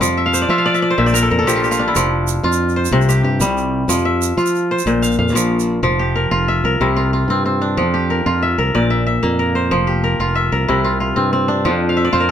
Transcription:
Already playing: kora G4
0.00 fingered electric bass F2, kora F3, shaker
0.17 kora E5
0.26 kora F5
0.34 kora C5, shaker
0.42 kora D5
0.49 fingered electric bass F3, kora F4 E5
0.58 kora F5
0.66 kora D5
0.74 kora E5, shaker
0.82 kora D5
0.90 kora C5
0.98 fingered electric bass A#1, kora A#2 E5
1.06 kora D5, shaker
1.14 kora A#4, shaker
1.23 kora A4
1.31 fingered electric bass F2, kora A#4
1.39 kora A4
1.47 fingered electric bass A#1, kora F3 G4, shaker
1.56 kora F4
1.64 kora G4, shaker
1.71 kora F4, shaker
1.79 kora D4
1.88 kora E4
1.96 fingered electric bass F1, kora F3, shaker
2.28 shaker
2.43 fingered electric bass F2, kora F4
2.53 shaker
2.69 shaker
2.76 kora C5
2.85 shaker
2.91 fingered electric bass C2, kora C3
3.01 shaker
3.09 kora G4, shaker
3.23 fingered electric bass G2, kora G4
3.40 fingered electric bass C2, kora G3, shaker
3.58 shaker
3.88 fingered electric bass F2, kora F3, shaker
4.05 kora E5
4.22 shaker
4.37 fingered electric bass F3, kora F4, shaker
4.46 shaker
4.55 shaker
4.71 kora C5
4.79 shaker
4.86 fingered electric bass A#1, kora A#2
5.02 kora F5, shaker
5.11 shaker
5.19 fingered electric bass F2, kora F5
5.28 shaker
5.35 fingered electric bass A#1, kora F3, shaker
5.60 shaker
5.83 fingered electric bass F1, kora F3
5.99 kora G4
6.16 kora A#4
6.31 fingered electric bass F1, kora F4
6.48 kora E5
6.64 fingered electric bass C2, kora A#4
6.80 fingered electric bass C2, kora C3 E4
6.96 kora F4
7.13 kora F4
7.28 fingered electric bass G2, kora C4
7.46 kora C4
7.62 kora D4
7.77 fingered electric bass F2, kora F3
7.94 kora G4
8.10 kora A#4
8.26 fingered electric bass F2, kora F4
8.43 kora E5
8.58 fingered electric bass C2, kora A#4
8.75 fingered electric bass A#1, kora A#2 D5
8.90 kora E5
9.07 kora E5
9.23 fingered electric bass F2, kora A#3
9.39 kora A#4
9.55 kora C5
9.71 fingered electric bass F1, kora F3
9.87 kora G4
10.04 kora A#4
10.19 fingered electric bass F1, kora F4
10.35 kora E5
10.52 fingered electric bass C2, kora A#4
10.68 fingered electric bass C2, kora C3 E4
10.84 kora F4
11.00 kora F4
11.16 fingered electric bass G2, kora C4
11.33 kora C4
11.48 kora D4
11.65 fingered electric bass F2, kora F3
11.89 kora F5
11.97 kora E5
12.05 kora D5
12.13 fingered electric bass F2, kora F4 C5
12.20 kora A#4

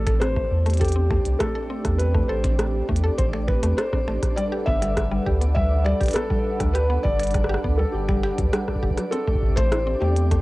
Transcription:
Already playing: sub bass A1, analog synth pad A3 C4 G4, synth texture D4 D5, felt piano A4
0.07 synth arpeggio sound A4, finger snap, kick, closed hi-hat
0.20 synth arpeggio sound C4, felt piano C5, cross-stick, closed hi-hat
0.36 synth arpeggio sound A3, kick
0.51 sub bass E2
0.66 synth arpeggio sound A3, closed hi-hat
0.70 closed hi-hat
0.74 closed hi-hat
0.77 felt piano G4, synth arpeggio sound A4, closed hi-hat
0.81 kick, closed hi-hat
0.85 closed hi-hat
0.88 closed hi-hat
0.92 synth arpeggio sound C4, closed hi-hat
1.11 synth arpeggio sound A3, finger snap, kick
1.25 sub bass C2, closed hi-hat
1.39 synth arpeggio sound A3, felt piano A4, finger snap, kick, cross-stick, closed hi-hat
1.55 synth arpeggio sound A4
1.70 synth arpeggio sound C4
1.85 sub bass E2, synth arpeggio sound A3, kick, cross-stick, closed hi-hat
1.98 felt piano B4, closed hi-hat
2.15 synth arpeggio sound A3, kick
2.28 sub bass A1, synth arpeggio sound A4, felt piano C5
2.44 synth arpeggio sound C4, finger snap, kick, closed hi-hat
2.59 synth arpeggio sound A3, cross-stick, closed hi-hat
2.89 sub bass E2, synth arpeggio sound A3, kick
2.96 closed hi-hat
3.04 synth arpeggio sound A4
3.18 sub bass A1, synth arpeggio sound C4, felt piano C5, kick, closed hi-hat
3.33 synth arpeggio sound A3, finger snap
3.47 felt piano B4, finger snap, kick
3.63 sub bass E2, synth arpeggio sound A3, closed hi-hat
3.77 synth arpeggio sound A4, felt piano C5, cross-stick, closed hi-hat
3.93 synth arpeggio sound C4, kick, cross-stick
4.08 sub bass A1, synth arpeggio sound A3, finger snap
4.23 kick, cross-stick, closed hi-hat
4.36 synth arpeggio sound G3, analog synth pad G3 A4 B4 F#5, felt piano D5, closed hi-hat
4.52 synth arpeggio sound G4
4.66 sub bass G1, synth arpeggio sound B3, felt piano E5, kick
4.82 synth arpeggio sound G3, finger snap, closed hi-hat
4.97 kick, cross-stick, closed hi-hat
5.12 synth arpeggio sound G3
5.26 sub bass D2, synth arpeggio sound G4, kick
5.41 synth arpeggio sound B3, closed hi-hat
5.55 synth arpeggio sound G3, felt piano E5, kick
5.84 synth arpeggio sound G3, felt piano D5, finger snap
6.01 sub bass B1, synth arpeggio sound G4, kick, closed hi-hat
6.03 closed hi-hat
6.06 finger snap, closed hi-hat
6.08 closed hi-hat
6.11 closed hi-hat
6.13 synth arpeggio sound B3, felt piano A4, cross-stick, closed hi-hat
6.16 closed hi-hat
6.30 synth arpeggio sound G3, kick
6.60 sub bass D2, synth arpeggio sound G3, kick, cross-stick, closed hi-hat
6.73 synth arpeggio sound G4, felt piano B4, closed hi-hat
6.90 synth arpeggio sound B3
7.03 sub bass G1, synth arpeggio sound G3, felt piano D5, kick
7.20 finger snap, closed hi-hat
7.23 closed hi-hat
7.27 closed hi-hat
7.31 cross-stick, closed hi-hat
7.34 synth arpeggio sound G3, kick, closed hi-hat
7.44 cross-stick
7.49 synth arpeggio sound G4
7.54 cross-stick
7.64 sub bass D2, synth arpeggio sound B3, kick
7.77 synth arpeggio sound G3, felt piano A4
7.92 sub bass G1, felt piano G4
8.09 synth arpeggio sound G3, finger snap, kick
8.23 synth arpeggio sound G4, finger snap
8.38 sub bass D2, synth arpeggio sound F#3, kick, closed hi-hat
8.53 synth arpeggio sound G3, cross-stick, closed hi-hat
8.68 kick, cross-stick
8.76 kick
8.83 sub bass G1, synth arpeggio sound G4, kick
8.90 kick
8.98 synth arpeggio sound F#3, cross-stick, closed hi-hat
9.11 analog synth pad A3 C4 G4, synth arpeggio sound C4, felt piano A4, closed hi-hat
9.27 synth arpeggio sound A3, kick
9.35 kick
9.42 sub bass A1, kick
9.50 kick
9.56 synth arpeggio sound A3, felt piano C5, finger snap, kick, closed hi-hat
9.72 synth arpeggio sound E4, cross-stick, closed hi-hat
9.87 synth arpeggio sound C4
10.00 sub bass E2, synth arpeggio sound A3, felt piano G4
10.16 closed hi-hat
10.31 synth arpeggio sound A3, kick, closed hi-hat

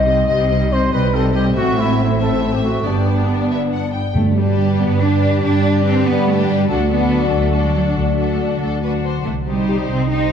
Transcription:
Already playing: double bass section C2, cello section C3, harp C3 G3 G4 C5 D#5, french horn section G3 D#4, trumpet section D#5
0.05 viola section G3, violin section C4 D#5, harp D#4
0.27 double bass section C2, harp C3, cello section C3, viola section G3, violin section C4 D#5, trumpet section D#5
0.48 viola section G3, harp G3, violin section D#5
0.52 violin section C4
0.71 viola section G3, violin section C4 D#5, harp C5, trumpet section C5
0.92 double bass section C2, cello section C3, viola section G3, violin section C4 D#5, trumpet section B4, harp D#5
1.13 viola section G3, violin section C4 D#5, harp G4, trumpet section A4
1.33 viola section G3, harp D#4, trumpet section G4, violin section D#5
1.37 violin section C4
1.56 double bass section A1, harp A2, cello section A2, viola section A3, french horn section A3 C4, violin section C4 E5, trumpet section F#4
1.78 harp A3, trumpet section E4
1.99 harp C5
2.20 viola section A3, violin section C4 E5, harp A4, trumpet section A4
2.42 harp C5
2.53 trumpet section G4
2.63 harp C4, trumpet section F#4
2.84 double bass section G1, harp G2, cello section G2, french horn section B3 D4, viola section B3, violin section D4 D5, trumpet section G4
3.06 harp B3
3.29 harp B4
3.51 harp D5, violin section E5
3.72 harp B4, violin section F#5
3.93 harp D4, violin section G5
4.14 timpani G2, harp G2, double bass section G2, cello section A3, french horn section D4 G4
4.37 harp D3, cello section G3, viola section D4, violin section G4 B4
4.58 harp G3
4.79 double bass section G2, cello section B3, harp D4
5.00 cello section D4, viola section D4, violin section G4 B4, harp B4
5.22 harp D4
5.43 harp G2, double bass section G2, cello section D4
5.63 harp D3, viola section D4, violin section G4 B4
5.85 harp G3, cello section C4
6.06 double bass section G2, cello section B3, harp D4
6.27 cello section A3, viola section D4, violin section G4 B4
6.48 cello section G3, harp D4
6.69 double bass section D2, harp D3, cello section A3, french horn section D4 F#4, viola section D4, violin section F#4 A4
6.91 harp F#3, cello section B3, viola section D4, violin section F#4 A4
7.12 harp D4
7.33 double bass section D2, cello section A3, harp A4
7.54 viola section D4, violin section F#4 A4, harp F#4
7.65 cello section G3
7.75 cello section F#3
7.97 double bass section D2, harp D3, cello section A3
8.18 harp F#3, viola section D4, violin section F#4 A4
8.40 harp D4
8.60 double bass section D2, violin section A4, harp A4
8.83 viola section D4, harp F#4, violin section F#4 B4
9.04 harp A4, violin section C5
9.25 double bass section C2, harp C3, cello section A3
9.47 cello section G3, harp C4, viola section D#4, violin section G4 C5
9.67 harp G3, french horn section D#4 G4
9.90 double bass section C2, cello section C4, harp D#4
10.10 cello section D#4, viola section D#4, violin section G4 C5, harp C5

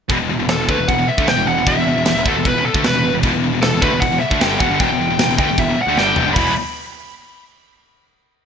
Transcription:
0.09 picked electric bass E1, distorted electric guitar E2 B2, kick, crash
0.19 picked electric bass E1, distorted electric guitar E2 B2
0.29 picked electric bass E1, distorted electric guitar E2 B2
0.39 picked electric bass E1, distorted electric guitar E2 B2
0.48 picked electric bass E1, distorted electric guitar E2 B2, lead electric guitar A4, snare, crash
0.58 picked electric bass E1, distorted electric guitar E2 B2
0.68 picked electric bass D2, distorted electric guitar D3 A3, lead electric guitar B4, kick
0.78 picked electric bass E1, distorted electric guitar E2 B2
0.88 picked electric bass E1, distorted electric guitar E2 B2, lead electric guitar F#5, kick, crash
0.98 picked electric bass E1, distorted electric guitar E2 B2
1.07 lead electric guitar E5, muted picked electric bass stroke, muted distorted electric guitar stroke
1.17 picked electric bass D2, distorted electric guitar D3 A3, kick
1.27 picked electric bass E1, distorted electric guitar E2 B2, lead electric guitar G5, snare, crash
1.37 picked electric bass E1, distorted electric guitar E2 B2
1.47 picked electric bass E1, distorted electric guitar E2 B2, lead electric guitar F#5
1.56 picked electric bass E1, distorted electric guitar E2 B2
1.66 picked electric bass E1, distorted electric guitar E2 B2, lead electric guitar E5, kick, crash
1.77 picked electric bass E1, distorted electric guitar E2 B2
1.87 picked electric bass E1, distorted electric guitar E2 B2
1.96 picked electric bass E1, distorted electric guitar E2 B2
2.05 picked electric bass E1, distorted electric guitar E2 B2, snare, crash
2.15 picked electric bass E1, distorted electric guitar E2 B2
2.25 picked electric bass D2, distorted electric guitar D3 A3, lead electric guitar A4, kick
2.34 picked electric bass E1, distorted electric guitar E2 B2
2.45 picked electric bass E1, distorted electric guitar E2 B2, lead electric guitar B4, kick, crash
2.54 picked electric bass E1, distorted electric guitar E2 B2
2.64 lead electric guitar A4, muted picked electric bass stroke, muted distorted electric guitar stroke
2.74 picked electric bass D2, distorted electric guitar D3 A3, kick
2.83 picked electric bass E1, distorted electric guitar E2 B2, lead electric guitar B4, snare, crash
2.93 picked electric bass E1, distorted electric guitar E2 B2
3.03 picked electric bass E1, distorted electric guitar E2 B2
3.13 picked electric bass E1, distorted electric guitar E2 B2
3.22 picked electric bass E1, distorted electric guitar E2 B2, kick, crash
3.32 picked electric bass E1, distorted electric guitar E2 B2
3.43 picked electric bass E1, distorted electric guitar E2 B2
3.53 picked electric bass E1, distorted electric guitar E2 B2
3.62 picked electric bass E1, distorted electric guitar E2 B2, lead electric guitar A4, snare, crash
3.73 picked electric bass E1, distorted electric guitar E2 B2
3.82 picked electric bass D2, distorted electric guitar D3 A3, lead electric guitar B4, kick
3.91 picked electric bass E1, distorted electric guitar E2 B2
4.00 picked electric bass E1, distorted electric guitar E2 B2, lead electric guitar F#5, kick, crash
4.11 picked electric bass E1, distorted electric guitar E2 B2
4.20 lead electric guitar E5, muted distorted electric guitar stroke, muted picked electric bass stroke
4.30 picked electric bass D2, distorted electric guitar D3 A3, kick
4.39 picked electric bass G1, distorted electric guitar G2 D3 G3, lead electric guitar G5, snare, crash
4.58 picked electric bass E1, distorted electric guitar E2 B2, lead electric guitar F#5, kick
4.69 picked electric bass G1, distorted electric guitar G2 D3
4.79 picked electric bass E1, distorted electric guitar E2 B2, lead electric guitar G5, kick, crash
4.89 picked electric bass E1, distorted electric guitar E2 B2
4.99 picked electric bass E1, distorted electric guitar E2 B2
5.08 picked electric bass E1, distorted electric guitar E2 B2
5.18 picked electric bass E1, distorted electric guitar E2 B2, snare, crash
5.28 picked electric bass E1, distorted electric guitar E2 B2
5.38 picked electric bass D2, distorted electric guitar D3 A3, lead electric guitar G5, kick
5.48 picked electric bass E1, distorted electric guitar E2 B2
5.58 picked electric bass E1, distorted electric guitar E2 B2, lead electric guitar E5, kick, crash
5.67 picked electric bass E1, distorted electric guitar E2 B2
5.78 lead electric guitar F#5, muted picked electric bass stroke, muted distorted electric guitar stroke
5.87 picked electric bass D2, distorted electric guitar D3 A3
5.97 picked electric bass G1, distorted electric guitar G2 D3 G3, lead electric guitar G5, snare
6.16 picked electric bass E1, distorted electric guitar E2 B2, floor tom
6.27 picked electric bass G1, distorted electric guitar G2 D3
6.33 picked electric bass E1, distorted electric guitar E2 B2 E3 G#3 B3 E4, lead electric guitar B5, kick, floor tom, open hi-hat
6.38 distorted electric guitar G#4

